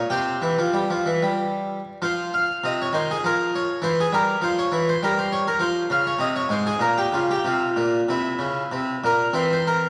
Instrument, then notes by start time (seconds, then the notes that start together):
harpsichord
0.10 C3 G4 C5
0.42 E3
0.59 F3
0.73 G3
0.90 F3
1.06 E3
1.23 G3
2.02 F3 F4 C5
2.34 F5
2.64 C3 D#5
2.82 C#5
2.93 D#3 C5
3.11 G#4
3.24 F3 A#4
3.55 C#5
3.82 E3 C5
4.00 G#4
4.12 G3 A#4
4.41 F3 C5
4.59 C#5
4.72 E3
4.89 C5
5.03 G3 A#4
5.19 C5
5.32 C#5
5.48 A#4
5.59 F3 C5
5.90 C#3 F5
6.07 C#5
6.19 C3 D#5
6.36 C#5
6.49 G#2 C5
6.67 G#4
6.79 A#2 A#4
6.98 G4
7.13 C#3 F4
7.31 G4
7.44 C3 F4
7.76 A#2
8.08 C3 E4
8.39 C#3
8.72 C3
9.04 A#2 A#4
9.33 E3 C4 C5
9.53 C5
9.67 A#4